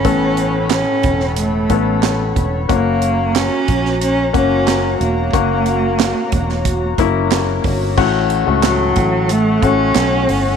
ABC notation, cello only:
X:1
M:4/4
L:1/8
Q:1/4=91
K:Amix
V:1 name="Cello"
C2 C2 A,3 z | ^A,2 C2 C C2 A,- | ^A,4- A, z3 | z2 F,2 A, C3 |]